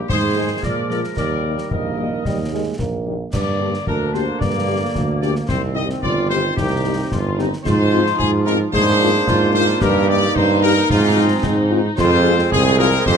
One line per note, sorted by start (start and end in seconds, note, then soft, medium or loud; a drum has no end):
0.09 0.55 G#2 loud
0.09 0.59 D#3 medium
0.09 1.17 G#3 medium
0.09 0.60 G#4 loud
0.09 0.59 C5 loud
0.09 concert bass drum medium
0.09 snare medium
0.36 0.46 G#3 medium
0.36 0.46 D#4 medium
0.63 1.03 A#2 medium
0.63 1.18 F3 medium
0.63 0.90 A#4 loud
0.63 0.89 D5 loud
0.63 concert bass drum medium
0.63 snare medium
0.89 1.00 F3 medium
0.89 0.99 G#3 medium
0.89 0.99 A#3 medium
0.89 1.16 A#4 medium
0.89 1.02 D5 medium
0.89 snare soft
1.04 snare medium
1.16 1.62 D#2 medium
1.16 3.07 D#3 medium
1.16 3.03 G3 medium
1.16 1.67 A#4 medium
1.16 1.67 D5 medium
1.16 concert bass drum medium
1.16 snare medium
1.16 crash soft
1.45 1.54 D#3 medium
1.45 1.55 G3 medium
1.45 1.54 A#3 medium
1.58 snare medium
1.71 2.16 A#1 medium
1.71 2.22 A#3 medium
1.71 2.75 A#4 medium
1.71 2.79 D#5 medium
1.71 concert bass drum medium
1.98 2.08 D#3 medium
1.98 2.08 G3 medium
1.98 2.08 A#3 medium
2.25 2.70 D#2 medium
2.25 2.38 G3 medium
2.25 concert bass drum medium
2.25 snare medium
2.52 2.62 D#3 medium
2.52 2.62 G3 medium
2.52 2.78 G#3 medium
2.52 2.62 A#3 medium
2.79 3.24 A#1 medium
2.79 3.29 A#3 medium
2.79 concert bass drum medium
2.79 snare medium
3.06 3.16 D#3 medium
3.06 3.16 G3 medium
3.06 3.15 A#3 medium
3.33 3.78 G2 medium
3.33 5.46 D3 medium
3.33 5.46 A#3 medium
3.33 3.83 D5 loud
3.33 concert bass drum medium
3.33 snare medium
3.33 crash medium
3.60 3.70 A#3 medium
3.60 3.70 D4 medium
3.60 3.70 G4 medium
3.74 snare medium
3.87 4.32 D2 medium
3.87 4.38 D4 medium
3.87 4.12 A#4 loud
3.87 concert bass drum medium
4.14 4.24 A#3 medium
4.14 4.24 D4 medium
4.14 4.24 G4 medium
4.14 4.41 C5 loud
4.14 snare soft
4.39 4.86 G2 medium
4.39 5.46 A#3 medium
4.39 5.20 D5 loud
4.39 concert bass drum medium
4.39 snare medium
4.67 4.78 A#3 medium
4.67 4.77 D4 medium
4.67 4.77 G4 medium
4.95 5.40 D2 medium
4.95 concert bass drum medium
4.95 snare medium
5.21 5.32 A#3 medium
5.21 5.32 D4 medium
5.21 5.32 G4 medium
5.21 5.33 D5 loud
5.21 snare medium
5.35 snare medium
5.48 5.94 C2 loud
5.48 7.61 D#3 medium
5.48 6.00 C4 medium
5.48 7.62 C4 medium
5.48 5.60 C5 loud
5.48 concert bass drum medium
5.48 snare medium
5.48 crash soft
5.75 5.86 C4 medium
5.75 5.86 D#4 medium
5.75 5.86 G4 medium
5.75 5.88 D#5 loud
5.89 snare medium
6.03 6.49 G1 loud
6.03 6.54 F4 loud
6.03 6.28 D5 loud
6.03 concert bass drum medium
6.30 6.40 C4 medium
6.30 6.40 D#4 medium
6.30 6.40 G4 medium
6.30 6.55 C5 loud
6.30 snare soft
6.57 7.03 C2 loud
6.57 7.12 D#4 medium
6.57 7.34 G4 loud
6.57 concert bass drum medium
6.57 snare medium
6.85 6.95 C4 medium
6.85 6.95 D#4 medium
6.85 6.94 G4 medium
7.12 7.52 G1 loud
7.12 7.39 F4 loud
7.12 concert bass drum medium
7.12 snare medium
7.38 7.48 C4 medium
7.38 7.47 D#4 medium
7.38 7.52 D#4 medium
7.38 7.48 G4 medium
7.38 snare medium
7.53 snare medium
7.64 8.10 G#2 loud
7.64 8.74 F3 medium
7.64 8.70 D#4 medium
7.64 8.70 F4 loud
7.64 8.15 C5 loud
7.64 concert bass drum medium
7.64 snare medium
7.64 crash soft
7.92 8.02 C4 medium
7.92 8.02 D#4 medium
7.92 8.02 F4 medium
8.06 snare medium
8.19 8.65 G#2 loud
8.19 8.31 G#4 loud
8.19 concert bass drum medium
8.46 8.56 C4 medium
8.46 8.56 D#4 medium
8.46 8.56 F4 medium
8.46 8.58 A#4 loud
8.46 snare medium
8.73 9.19 G#2 loud
8.73 10.90 A#3 loud
8.73 9.78 D4 loud
8.73 9.24 G#4 loud
8.73 9.50 C5 loud
8.73 concert bass drum medium
8.73 snare medium
9.00 9.10 A#3 medium
9.00 9.10 D4 medium
9.00 9.10 F4 medium
9.27 9.73 G#2 loud
9.27 9.78 F4 loud
9.27 concert bass drum medium
9.27 snare medium
9.54 9.64 A#3 medium
9.54 9.64 D4 medium
9.54 9.64 F4 medium
9.54 9.80 C5 loud
9.54 snare medium
9.68 snare medium
9.81 10.27 G2 loud
9.81 10.91 D#4 loud
9.81 10.32 G4 loud
9.81 10.09 A#4 loud
9.81 concert bass drum loud
9.81 snare medium
9.81 crash soft
10.07 10.17 A#3 medium
10.07 10.18 D#4 medium
10.07 10.17 G4 medium
10.07 10.36 D5 loud
10.22 snare medium
10.36 10.81 G2 loud
10.36 11.94 D#4 loud
10.36 10.63 C5 loud
10.36 concert bass drum medium
10.62 10.73 A#3 medium
10.62 10.72 D#4 medium
10.62 10.72 G4 loud
10.62 10.88 A#4 loud
10.90 11.35 G#2 loud
10.90 11.82 G#3 loud
10.90 11.82 C4 loud
10.90 11.67 F4 loud
10.90 concert bass drum loud
10.90 snare medium
11.17 11.26 C4 medium
11.17 11.27 F4 medium
11.43 11.89 G#2 loud
11.43 concert bass drum medium
11.43 snare medium
11.70 11.80 C4 medium
11.70 11.81 F4 medium
11.98 12.43 F2 loud
11.98 13.17 G#3 loud
11.98 13.17 C4 loud
11.98 12.48 F4 loud
11.98 12.48 C5 loud
11.98 concert bass drum medium
11.98 snare medium
11.98 crash medium
12.24 12.34 C4 medium
12.24 12.34 F4 medium
12.24 12.34 G#4 medium
12.38 snare medium
12.52 12.97 C2 loud
12.52 13.02 G#4 loud
12.52 12.77 G#4 loud
12.52 concert bass drum medium
12.78 12.88 C4 medium
12.78 12.88 F4 medium
12.78 12.88 G#4 medium
12.78 13.04 A#4 loud
12.78 snare medium
13.06 13.17 F2 loud
13.06 13.17 G4 loud
13.06 13.17 C5 loud
13.06 concert bass drum medium
13.06 snare medium